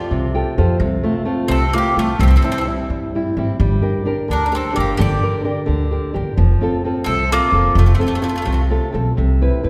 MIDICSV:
0, 0, Header, 1, 5, 480
1, 0, Start_track
1, 0, Key_signature, -1, "major"
1, 0, Tempo, 465116
1, 823, Time_signature, 6, 3, 24, 8
1, 10005, End_track
2, 0, Start_track
2, 0, Title_t, "Mandolin"
2, 0, Program_c, 0, 25
2, 1562, Note_on_c, 0, 69, 75
2, 1783, Note_off_c, 0, 69, 0
2, 1835, Note_on_c, 0, 67, 72
2, 2032, Note_off_c, 0, 67, 0
2, 2052, Note_on_c, 0, 65, 64
2, 2258, Note_off_c, 0, 65, 0
2, 2301, Note_on_c, 0, 67, 70
2, 2356, Note_off_c, 0, 67, 0
2, 2378, Note_on_c, 0, 69, 53
2, 2421, Note_off_c, 0, 69, 0
2, 2433, Note_on_c, 0, 69, 54
2, 2500, Note_off_c, 0, 69, 0
2, 2522, Note_on_c, 0, 69, 41
2, 2582, Note_off_c, 0, 69, 0
2, 2600, Note_on_c, 0, 69, 61
2, 2658, Note_off_c, 0, 69, 0
2, 2696, Note_on_c, 0, 69, 48
2, 2744, Note_off_c, 0, 69, 0
2, 4466, Note_on_c, 0, 70, 61
2, 4621, Note_off_c, 0, 70, 0
2, 4663, Note_on_c, 0, 70, 48
2, 4697, Note_off_c, 0, 70, 0
2, 4708, Note_on_c, 0, 69, 54
2, 4911, Note_off_c, 0, 69, 0
2, 4956, Note_on_c, 0, 67, 63
2, 5153, Note_off_c, 0, 67, 0
2, 5174, Note_on_c, 0, 74, 79
2, 5665, Note_off_c, 0, 74, 0
2, 7287, Note_on_c, 0, 69, 82
2, 7521, Note_off_c, 0, 69, 0
2, 7568, Note_on_c, 0, 65, 74
2, 7994, Note_off_c, 0, 65, 0
2, 8032, Note_on_c, 0, 65, 54
2, 8097, Note_off_c, 0, 65, 0
2, 8123, Note_on_c, 0, 65, 42
2, 8183, Note_off_c, 0, 65, 0
2, 8199, Note_on_c, 0, 65, 45
2, 8260, Note_off_c, 0, 65, 0
2, 8282, Note_on_c, 0, 65, 34
2, 8312, Note_off_c, 0, 65, 0
2, 8324, Note_on_c, 0, 65, 37
2, 8396, Note_off_c, 0, 65, 0
2, 8422, Note_on_c, 0, 65, 38
2, 8472, Note_off_c, 0, 65, 0
2, 8484, Note_on_c, 0, 65, 43
2, 8540, Note_off_c, 0, 65, 0
2, 8552, Note_on_c, 0, 65, 33
2, 8611, Note_off_c, 0, 65, 0
2, 8624, Note_on_c, 0, 65, 46
2, 8677, Note_off_c, 0, 65, 0
2, 8690, Note_on_c, 0, 65, 44
2, 8770, Note_off_c, 0, 65, 0
2, 8798, Note_on_c, 0, 65, 41
2, 8865, Note_off_c, 0, 65, 0
2, 10005, End_track
3, 0, Start_track
3, 0, Title_t, "Nylon-string guitar"
3, 0, Program_c, 1, 24
3, 0, Note_on_c, 1, 65, 47
3, 0, Note_on_c, 1, 67, 46
3, 0, Note_on_c, 1, 69, 55
3, 114, Note_on_c, 1, 48, 62
3, 272, Note_off_c, 1, 65, 0
3, 275, Note_off_c, 1, 67, 0
3, 275, Note_off_c, 1, 69, 0
3, 357, Note_on_c, 1, 65, 44
3, 357, Note_on_c, 1, 79, 54
3, 364, Note_on_c, 1, 67, 41
3, 367, Note_on_c, 1, 69, 44
3, 573, Note_off_c, 1, 79, 0
3, 577, Note_off_c, 1, 48, 0
3, 586, Note_off_c, 1, 65, 0
3, 593, Note_off_c, 1, 67, 0
3, 593, Note_off_c, 1, 69, 0
3, 598, Note_on_c, 1, 65, 52
3, 601, Note_on_c, 1, 72, 59
3, 605, Note_on_c, 1, 67, 47
3, 609, Note_on_c, 1, 69, 57
3, 781, Note_off_c, 1, 65, 0
3, 786, Note_off_c, 1, 67, 0
3, 786, Note_off_c, 1, 69, 0
3, 812, Note_off_c, 1, 72, 0
3, 832, Note_on_c, 1, 48, 59
3, 1067, Note_on_c, 1, 57, 52
3, 1074, Note_on_c, 1, 60, 46
3, 1076, Note_on_c, 1, 65, 59
3, 1279, Note_off_c, 1, 57, 0
3, 1284, Note_off_c, 1, 60, 0
3, 1292, Note_off_c, 1, 65, 0
3, 1292, Note_on_c, 1, 57, 52
3, 1295, Note_off_c, 1, 48, 0
3, 1296, Note_on_c, 1, 60, 48
3, 1304, Note_on_c, 1, 65, 60
3, 1521, Note_on_c, 1, 48, 67
3, 1684, Note_off_c, 1, 57, 0
3, 1687, Note_off_c, 1, 60, 0
3, 1692, Note_off_c, 1, 65, 0
3, 1793, Note_on_c, 1, 57, 39
3, 1798, Note_on_c, 1, 60, 33
3, 1800, Note_on_c, 1, 65, 43
3, 2000, Note_off_c, 1, 48, 0
3, 2012, Note_off_c, 1, 60, 0
3, 2013, Note_off_c, 1, 57, 0
3, 2020, Note_off_c, 1, 65, 0
3, 2025, Note_on_c, 1, 57, 43
3, 2026, Note_on_c, 1, 60, 43
3, 2033, Note_on_c, 1, 65, 54
3, 2213, Note_off_c, 1, 60, 0
3, 2214, Note_off_c, 1, 57, 0
3, 2218, Note_off_c, 1, 65, 0
3, 2259, Note_on_c, 1, 48, 61
3, 2510, Note_on_c, 1, 55, 47
3, 2518, Note_on_c, 1, 60, 42
3, 2524, Note_on_c, 1, 64, 47
3, 2730, Note_off_c, 1, 48, 0
3, 2736, Note_off_c, 1, 60, 0
3, 2738, Note_off_c, 1, 55, 0
3, 2745, Note_off_c, 1, 64, 0
3, 2750, Note_on_c, 1, 55, 50
3, 2750, Note_on_c, 1, 60, 44
3, 2757, Note_on_c, 1, 64, 50
3, 2984, Note_off_c, 1, 55, 0
3, 2997, Note_on_c, 1, 55, 58
3, 3135, Note_off_c, 1, 60, 0
3, 3141, Note_off_c, 1, 64, 0
3, 3242, Note_off_c, 1, 55, 0
3, 3252, Note_on_c, 1, 55, 42
3, 3252, Note_on_c, 1, 60, 33
3, 3260, Note_on_c, 1, 64, 44
3, 3473, Note_off_c, 1, 55, 0
3, 3475, Note_off_c, 1, 60, 0
3, 3481, Note_off_c, 1, 64, 0
3, 3485, Note_on_c, 1, 55, 48
3, 3489, Note_on_c, 1, 60, 43
3, 3494, Note_on_c, 1, 64, 48
3, 3667, Note_off_c, 1, 55, 0
3, 3668, Note_off_c, 1, 60, 0
3, 3672, Note_off_c, 1, 64, 0
3, 3718, Note_on_c, 1, 55, 63
3, 3937, Note_on_c, 1, 62, 47
3, 3944, Note_on_c, 1, 67, 41
3, 3949, Note_on_c, 1, 70, 49
3, 4172, Note_off_c, 1, 62, 0
3, 4173, Note_off_c, 1, 67, 0
3, 4182, Note_off_c, 1, 55, 0
3, 4182, Note_on_c, 1, 62, 48
3, 4186, Note_off_c, 1, 70, 0
3, 4190, Note_on_c, 1, 67, 49
3, 4198, Note_on_c, 1, 70, 46
3, 4419, Note_on_c, 1, 50, 62
3, 4575, Note_off_c, 1, 62, 0
3, 4575, Note_off_c, 1, 67, 0
3, 4583, Note_off_c, 1, 70, 0
3, 4661, Note_on_c, 1, 62, 43
3, 4666, Note_on_c, 1, 67, 39
3, 4672, Note_on_c, 1, 70, 40
3, 4870, Note_off_c, 1, 62, 0
3, 4880, Note_off_c, 1, 67, 0
3, 4882, Note_on_c, 1, 62, 52
3, 4886, Note_off_c, 1, 70, 0
3, 4892, Note_off_c, 1, 50, 0
3, 4892, Note_on_c, 1, 67, 47
3, 4898, Note_on_c, 1, 70, 55
3, 5143, Note_on_c, 1, 50, 66
3, 5280, Note_off_c, 1, 62, 0
3, 5286, Note_off_c, 1, 67, 0
3, 5290, Note_off_c, 1, 70, 0
3, 5397, Note_on_c, 1, 62, 51
3, 5401, Note_on_c, 1, 67, 43
3, 5404, Note_on_c, 1, 70, 57
3, 5607, Note_off_c, 1, 62, 0
3, 5609, Note_off_c, 1, 70, 0
3, 5613, Note_off_c, 1, 50, 0
3, 5613, Note_off_c, 1, 67, 0
3, 5617, Note_on_c, 1, 62, 52
3, 5624, Note_on_c, 1, 70, 59
3, 5625, Note_on_c, 1, 67, 48
3, 5842, Note_on_c, 1, 50, 65
3, 6009, Note_off_c, 1, 62, 0
3, 6010, Note_off_c, 1, 70, 0
3, 6013, Note_off_c, 1, 67, 0
3, 6096, Note_on_c, 1, 62, 41
3, 6102, Note_on_c, 1, 67, 36
3, 6114, Note_on_c, 1, 70, 48
3, 6320, Note_off_c, 1, 50, 0
3, 6322, Note_off_c, 1, 62, 0
3, 6325, Note_off_c, 1, 67, 0
3, 6328, Note_off_c, 1, 70, 0
3, 6333, Note_on_c, 1, 62, 50
3, 6340, Note_on_c, 1, 67, 45
3, 6340, Note_on_c, 1, 70, 52
3, 6526, Note_off_c, 1, 62, 0
3, 6528, Note_off_c, 1, 67, 0
3, 6529, Note_off_c, 1, 70, 0
3, 6575, Note_on_c, 1, 53, 59
3, 6821, Note_on_c, 1, 60, 49
3, 6829, Note_on_c, 1, 65, 44
3, 6840, Note_on_c, 1, 69, 55
3, 7044, Note_off_c, 1, 53, 0
3, 7051, Note_off_c, 1, 60, 0
3, 7060, Note_off_c, 1, 65, 0
3, 7063, Note_on_c, 1, 60, 42
3, 7064, Note_off_c, 1, 69, 0
3, 7071, Note_on_c, 1, 65, 49
3, 7079, Note_on_c, 1, 69, 48
3, 7304, Note_on_c, 1, 48, 71
3, 7447, Note_off_c, 1, 60, 0
3, 7453, Note_off_c, 1, 65, 0
3, 7455, Note_off_c, 1, 69, 0
3, 7547, Note_on_c, 1, 60, 42
3, 7555, Note_on_c, 1, 65, 43
3, 7557, Note_on_c, 1, 69, 45
3, 7763, Note_off_c, 1, 60, 0
3, 7767, Note_off_c, 1, 48, 0
3, 7767, Note_off_c, 1, 65, 0
3, 7769, Note_off_c, 1, 69, 0
3, 7775, Note_on_c, 1, 60, 44
3, 7778, Note_on_c, 1, 65, 45
3, 7784, Note_on_c, 1, 69, 55
3, 8005, Note_on_c, 1, 48, 69
3, 8164, Note_off_c, 1, 60, 0
3, 8167, Note_off_c, 1, 65, 0
3, 8168, Note_off_c, 1, 69, 0
3, 8245, Note_on_c, 1, 60, 53
3, 8252, Note_on_c, 1, 65, 49
3, 8254, Note_on_c, 1, 69, 56
3, 8463, Note_off_c, 1, 60, 0
3, 8471, Note_off_c, 1, 69, 0
3, 8475, Note_on_c, 1, 60, 45
3, 8479, Note_off_c, 1, 65, 0
3, 8480, Note_off_c, 1, 48, 0
3, 8484, Note_on_c, 1, 69, 55
3, 8491, Note_on_c, 1, 65, 42
3, 8717, Note_on_c, 1, 48, 64
3, 8875, Note_off_c, 1, 60, 0
3, 8880, Note_off_c, 1, 69, 0
3, 8885, Note_off_c, 1, 65, 0
3, 8978, Note_on_c, 1, 60, 36
3, 8983, Note_on_c, 1, 65, 39
3, 8992, Note_on_c, 1, 69, 42
3, 9198, Note_off_c, 1, 60, 0
3, 9199, Note_off_c, 1, 65, 0
3, 9200, Note_off_c, 1, 48, 0
3, 9211, Note_off_c, 1, 69, 0
3, 9211, Note_on_c, 1, 60, 44
3, 9212, Note_on_c, 1, 65, 38
3, 9224, Note_on_c, 1, 69, 51
3, 9406, Note_off_c, 1, 60, 0
3, 9406, Note_off_c, 1, 65, 0
3, 9413, Note_off_c, 1, 69, 0
3, 9465, Note_on_c, 1, 48, 64
3, 9717, Note_on_c, 1, 60, 48
3, 9717, Note_on_c, 1, 64, 44
3, 9725, Note_on_c, 1, 71, 56
3, 9933, Note_off_c, 1, 60, 0
3, 9934, Note_off_c, 1, 64, 0
3, 9936, Note_off_c, 1, 48, 0
3, 9938, Note_off_c, 1, 71, 0
3, 9944, Note_on_c, 1, 60, 51
3, 9950, Note_on_c, 1, 64, 39
3, 9951, Note_on_c, 1, 71, 53
3, 10005, Note_off_c, 1, 60, 0
3, 10005, Note_off_c, 1, 64, 0
3, 10005, Note_off_c, 1, 71, 0
3, 10005, End_track
4, 0, Start_track
4, 0, Title_t, "Mandolin"
4, 0, Program_c, 2, 25
4, 1531, Note_on_c, 2, 60, 86
4, 1766, Note_off_c, 2, 60, 0
4, 1789, Note_on_c, 2, 58, 84
4, 2008, Note_off_c, 2, 58, 0
4, 2053, Note_on_c, 2, 57, 76
4, 2259, Note_off_c, 2, 57, 0
4, 2276, Note_on_c, 2, 60, 74
4, 2339, Note_off_c, 2, 60, 0
4, 2351, Note_on_c, 2, 60, 53
4, 2420, Note_off_c, 2, 60, 0
4, 2445, Note_on_c, 2, 60, 63
4, 2490, Note_off_c, 2, 60, 0
4, 2502, Note_on_c, 2, 60, 54
4, 2571, Note_off_c, 2, 60, 0
4, 2598, Note_on_c, 2, 60, 74
4, 2651, Note_off_c, 2, 60, 0
4, 2663, Note_on_c, 2, 60, 63
4, 2727, Note_off_c, 2, 60, 0
4, 4449, Note_on_c, 2, 62, 56
4, 4590, Note_off_c, 2, 62, 0
4, 4602, Note_on_c, 2, 62, 58
4, 4669, Note_off_c, 2, 62, 0
4, 4695, Note_on_c, 2, 60, 75
4, 4904, Note_off_c, 2, 60, 0
4, 4910, Note_on_c, 2, 58, 73
4, 5129, Note_off_c, 2, 58, 0
4, 5133, Note_on_c, 2, 67, 73
4, 5643, Note_off_c, 2, 67, 0
4, 7269, Note_on_c, 2, 60, 62
4, 7537, Note_off_c, 2, 60, 0
4, 7557, Note_on_c, 2, 58, 94
4, 7988, Note_off_c, 2, 58, 0
4, 8038, Note_on_c, 2, 57, 59
4, 8100, Note_off_c, 2, 57, 0
4, 8114, Note_on_c, 2, 57, 43
4, 8178, Note_off_c, 2, 57, 0
4, 8203, Note_on_c, 2, 57, 54
4, 8255, Note_off_c, 2, 57, 0
4, 8268, Note_on_c, 2, 57, 39
4, 8324, Note_off_c, 2, 57, 0
4, 8337, Note_on_c, 2, 57, 56
4, 8402, Note_off_c, 2, 57, 0
4, 8413, Note_on_c, 2, 57, 51
4, 8479, Note_off_c, 2, 57, 0
4, 8500, Note_on_c, 2, 57, 62
4, 8546, Note_off_c, 2, 57, 0
4, 8558, Note_on_c, 2, 57, 47
4, 8627, Note_off_c, 2, 57, 0
4, 8645, Note_on_c, 2, 57, 62
4, 8708, Note_off_c, 2, 57, 0
4, 8725, Note_on_c, 2, 57, 55
4, 8788, Note_off_c, 2, 57, 0
4, 8814, Note_on_c, 2, 57, 42
4, 8874, Note_off_c, 2, 57, 0
4, 10005, End_track
5, 0, Start_track
5, 0, Title_t, "Upright bass"
5, 0, Program_c, 3, 32
5, 115, Note_on_c, 3, 36, 68
5, 425, Note_off_c, 3, 36, 0
5, 597, Note_on_c, 3, 41, 82
5, 746, Note_off_c, 3, 41, 0
5, 822, Note_on_c, 3, 36, 100
5, 983, Note_off_c, 3, 36, 0
5, 1539, Note_on_c, 3, 36, 66
5, 1854, Note_off_c, 3, 36, 0
5, 2028, Note_on_c, 3, 36, 77
5, 2180, Note_off_c, 3, 36, 0
5, 2265, Note_on_c, 3, 36, 109
5, 2425, Note_off_c, 3, 36, 0
5, 2990, Note_on_c, 3, 43, 76
5, 3303, Note_off_c, 3, 43, 0
5, 3475, Note_on_c, 3, 32, 82
5, 3625, Note_off_c, 3, 32, 0
5, 3711, Note_on_c, 3, 31, 106
5, 3871, Note_off_c, 3, 31, 0
5, 4436, Note_on_c, 3, 38, 69
5, 4748, Note_off_c, 3, 38, 0
5, 4927, Note_on_c, 3, 31, 77
5, 5074, Note_off_c, 3, 31, 0
5, 5155, Note_on_c, 3, 31, 107
5, 5313, Note_off_c, 3, 31, 0
5, 5861, Note_on_c, 3, 38, 62
5, 6175, Note_off_c, 3, 38, 0
5, 6354, Note_on_c, 3, 31, 85
5, 6503, Note_off_c, 3, 31, 0
5, 6579, Note_on_c, 3, 29, 98
5, 6740, Note_off_c, 3, 29, 0
5, 7291, Note_on_c, 3, 36, 73
5, 7606, Note_off_c, 3, 36, 0
5, 7764, Note_on_c, 3, 29, 83
5, 7921, Note_off_c, 3, 29, 0
5, 8000, Note_on_c, 3, 29, 111
5, 8167, Note_off_c, 3, 29, 0
5, 8739, Note_on_c, 3, 36, 67
5, 9055, Note_off_c, 3, 36, 0
5, 9231, Note_on_c, 3, 35, 79
5, 9383, Note_off_c, 3, 35, 0
5, 9474, Note_on_c, 3, 36, 76
5, 9787, Note_off_c, 3, 36, 0
5, 9954, Note_on_c, 3, 48, 74
5, 10005, Note_off_c, 3, 48, 0
5, 10005, End_track
0, 0, End_of_file